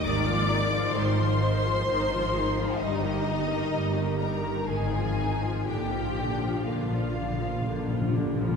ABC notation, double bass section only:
X:1
M:3/4
L:1/8
Q:1/4=63
K:Eb
V:1 name="Double bass section" clef=bass
A,,,2 A,,,2 A,,,2 | G,,,2 G,,,2 A,,,2 | B,,,2 B,,,2 B,,,2 |]